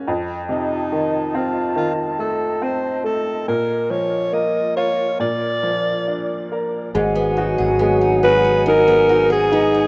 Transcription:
0.06 3.43 F2 medium
0.06 3.44 F4 medium
0.06 5.16 D#5 medium
0.06 3.44 A5 medium
0.49 2.15 C3 soft
0.49 1.37 D#4 medium
0.92 1.74 D#3 soft
1.35 2.60 C4 soft
1.35 1.77 F4 medium
1.76 3.43 D#3 soft
1.76 1.93 F4 medium
2.19 3.03 A3 soft
2.19 2.65 A4 medium
2.62 3.45 C4 soft
2.62 3.05 C5 medium
3.04 3.46 A3 soft
3.04 3.45 A4 medium
3.47 5.16 A#2 medium
3.47 6.91 F4 medium
3.47 6.91 A#4 medium
3.47 3.92 A#4 medium
3.90 5.16 F3 soft
3.90 4.35 C#5 medium
4.33 5.17 A#3 soft
4.33 4.76 D#5 medium
4.76 5.19 F4 soft
4.76 5.17 C#5 medium
5.20 6.90 A#2 medium
5.20 6.93 D5 medium
5.20 6.47 D5 medium
5.63 6.90 F3 soft
6.08 6.92 D4 soft
6.52 6.93 A#4 soft
6.94 7.55 G#1 medium
6.94 8.65 G#2 medium
6.94 9.87 F#3 medium
6.94 7.80 G#3 medium
6.94 9.87 F#4 medium
6.94 9.87 G#4 medium
6.94 9.87 F#5 medium
6.94 9.87 G#5 medium
7.15 7.79 B3 medium
7.37 8.01 D#4 medium
7.37 8.22 F#4 soft
7.58 9.87 G#1 medium
7.58 9.29 G#4 medium
7.79 9.48 G#3 medium
7.79 8.22 B3 medium
8.01 8.44 D#4 soft
8.23 8.87 B3 medium
8.23 9.08 F#4 medium
8.23 8.63 B4 loud
8.44 9.09 D#4 medium
8.66 9.87 G#2 medium
8.66 9.50 D#4 medium
8.66 9.27 A#4 loud
8.88 9.52 B3 medium
9.09 9.74 D#4 medium
9.09 9.87 F#4 soft
9.30 9.87 G#4 medium
9.52 9.87 B3 medium
9.52 9.87 D#4 medium
9.74 9.87 D#4 medium

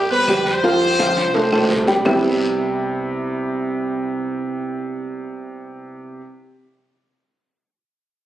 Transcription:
0.00 0.24 G2 loud
0.00 0.10 G4 medium
0.10 0.25 B3 medium
0.10 0.25 B4 medium
0.10 0.44 B4 loud
0.10 0.25 C5 medium
0.10 high conga soft
0.28 1.11 F2 loud
0.28 0.57 G3 medium
0.28 0.58 G4 medium
0.28 0.58 G5 loud
0.28 cowbell medium
0.28 high conga medium
0.28 low timbale medium
0.28 low agogo loud
0.28 short guiro medium
0.28 claves medium
0.46 1.66 C5 loud
0.46 high conga medium
0.46 short guiro medium
0.64 0.93 F3 medium
0.64 0.93 F4 loud
0.64 0.93 F5 loud
0.64 cowbell loud
0.64 high conga soft
0.64 low agogo medium
0.64 long guiro medium
0.81 high conga soft
0.81 low agogo medium
0.99 1.28 F3 medium
0.99 1.28 F4 medium
0.99 1.29 F5 medium
0.99 cowbell medium
0.99 high conga loud
0.99 low timbale medium
0.99 low agogo loud
0.99 short guiro medium
0.99 claves medium
1.16 1.50 C2 loud
1.16 high timbale medium
1.16 short guiro medium
1.34 1.49 A3 medium
1.34 1.49 A4 medium
1.34 1.50 C5 medium
1.34 cowbell loud
1.34 high conga soft
1.34 high timbale loud
1.34 low agogo medium
1.34 long guiro medium
1.52 1.69 B1 medium
1.52 1.81 A3 medium
1.52 1.82 A4 medium
1.52 1.82 C5 medium
1.52 high bongo medium
1.52 high conga soft
1.52 low agogo loud
1.52 claves medium
1.64 high bongo medium
1.70 2.01 C2 loud
1.70 cowbell medium
1.70 high conga medium
1.70 low timbale loud
1.70 short guiro medium
1.87 2.02 G3 medium
1.87 2.02 G4 medium
1.87 2.02 G5 medium
1.87 low bongo medium
1.87 high conga soft
1.87 low timbale medium
1.87 low agogo medium
1.87 short guiro medium
2.05 6.20 C2 loud
2.05 6.19 C3 loud
2.05 6.20 G3 loud
2.05 6.20 B3 medium
2.05 6.20 C4 medium
2.05 6.20 E4 loud
2.05 6.21 G4 loud
2.05 low bongo loud
2.05 low conga loud
2.05 low timbale loud
2.05 long guiro medium
2.05 claves loud

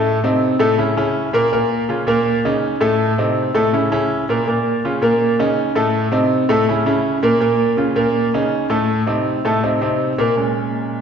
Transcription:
0.00 0.17 A2 medium
0.00 0.17 A3 medium
0.00 0.17 A4 medium
0.24 0.54 C3 medium
0.24 0.54 C4 medium
0.24 0.54 D#4 medium
0.59 0.75 A2 medium
0.59 0.75 A3 medium
0.59 0.75 A4 loud
0.78 0.93 C#3 medium
0.78 0.94 C#4 medium
0.78 0.94 E4 medium
0.97 1.27 C#3 medium
0.97 1.28 C#4 medium
0.97 1.28 E4 medium
1.33 1.49 A#2 medium
1.33 1.49 A#3 loud
1.33 1.49 A#4 loud
1.53 1.83 A#2 medium
1.53 1.83 A#3 medium
1.53 1.83 A#4 medium
1.89 2.04 C#3 medium
1.89 2.04 C#4 medium
1.89 2.05 F4 medium
2.07 2.37 A#2 loud
2.07 2.38 A#3 loud
2.07 2.38 A#4 medium
2.45 2.75 C#3 medium
2.45 2.75 C#4 medium
2.45 2.75 D#4 medium
2.81 3.11 A2 medium
2.81 3.11 A3 medium
2.81 3.12 A4 loud
3.18 3.48 C3 medium
3.18 3.48 C4 medium
3.18 3.49 D#4 medium
3.55 3.70 A2 medium
3.55 3.70 A3 medium
3.55 3.70 A4 medium
3.73 3.88 C#3 medium
3.73 3.89 C#4 medium
3.73 3.89 E4 medium
3.92 4.22 C#3 medium
3.92 4.22 C#4 medium
3.92 4.22 E4 medium
4.29 4.44 A#2 medium
4.29 4.44 A#3 medium
4.29 4.45 A#4 medium
4.47 4.78 A#2 medium
4.47 4.78 A#3 medium
4.47 4.78 A#4 medium
4.85 4.99 C#3 medium
4.85 5.00 C#4 medium
4.85 5.00 F4 medium
5.02 5.32 A#2 medium
5.02 5.33 A#3 medium
5.02 5.33 A#4 medium
5.39 5.69 C#3 medium
5.39 5.70 C#4 medium
5.39 5.70 D#4 medium
5.75 6.06 A2 medium
5.75 6.06 A3 medium
5.75 6.06 A4 medium
6.12 6.42 C3 medium
6.12 6.42 C4 medium
6.12 6.43 D#4 medium
6.49 6.64 A2 loud
6.49 6.65 A3 medium
6.49 6.65 A4 loud
6.69 6.84 C#3 medium
6.69 6.84 C#4 medium
6.69 6.84 E4 medium
6.86 7.16 C#3 medium
6.86 7.17 C#4 medium
6.86 7.17 E4 medium
7.23 7.38 A#2 loud
7.23 7.38 A#3 loud
7.23 7.39 A#4 medium
7.40 7.71 A#2 medium
7.40 7.72 A#3 medium
7.40 7.72 A#4 medium
7.77 7.93 C#3 medium
7.77 7.93 C#4 medium
7.77 7.93 F4 medium
7.96 8.26 A#2 medium
7.96 8.27 A#3 medium
7.96 8.27 A#4 medium
8.34 8.64 C#3 medium
8.34 8.64 C#4 medium
8.34 8.65 D#4 medium
8.70 9.00 A2 medium
8.70 9.00 A3 medium
8.70 9.01 A4 medium
9.07 9.37 C3 medium
9.07 9.38 C4 medium
9.07 9.38 D#4 medium
9.45 9.60 A2 medium
9.45 9.60 A3 medium
9.45 9.60 A4 medium
9.63 9.78 C3 medium
9.63 9.78 C4 medium
9.63 9.79 D#4 medium
9.81 10.11 C3 medium
9.81 10.12 C4 medium
9.81 10.12 D#4 medium
10.18 10.33 A#2 medium
10.18 10.33 A#3 medium
10.18 10.34 A#4 medium
10.36 11.01 A#2 medium
10.36 11.01 G#3 medium
10.36 11.01 C#4 medium

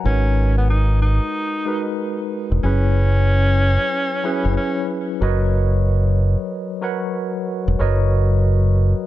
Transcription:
0.00 0.24 F#5 medium
0.04 1.18 G#1 loud
0.04 0.95 G#3 medium
0.04 0.55 C#4 loud
0.04 0.95 D#4 medium
0.04 0.96 F#4 medium
0.04 0.96 A#4 medium
0.04 0.96 B4 medium
0.58 0.69 B3 medium
0.70 0.99 D#4 medium
1.02 1.95 D#4 medium
1.65 2.33 G#3 medium
1.65 2.33 D#4 medium
1.65 2.33 F#4 medium
1.65 2.33 A#4 medium
1.65 2.34 B4 medium
2.52 2.62 E1 loud
2.63 3.76 F#1 loud
2.63 3.54 F#3 medium
2.63 3.54 C#4 medium
2.63 4.53 C#4 loud
2.63 3.54 E4 medium
2.63 3.55 G#4 medium
2.63 3.55 B4 medium
4.23 4.91 F#3 medium
4.23 4.91 C#4 medium
4.23 4.91 E4 medium
4.23 4.91 G#4 medium
4.23 4.92 B4 loud
4.45 4.56 F#1 medium
4.57 4.86 C#4 medium
5.21 6.35 F#1 loud
5.21 6.12 F#3 medium
5.21 6.12 F#4 medium
5.21 6.12 A#4 medium
5.21 6.12 B4 medium
5.21 6.13 C#5 medium
5.21 6.13 D#5 loud
6.82 7.49 F#3 medium
6.82 7.49 F#4 medium
6.82 7.49 A#4 medium
6.82 7.50 B4 medium
6.82 7.50 C#5 medium
6.82 7.50 F#5 medium
7.68 7.79 E1 loud
7.79 8.93 F#1 loud
7.79 8.70 F#3 medium
7.79 8.70 F#4 medium
7.79 8.70 A#4 medium
7.79 8.70 B4 medium
7.79 8.70 C#5 medium
7.79 8.71 D#5 loud

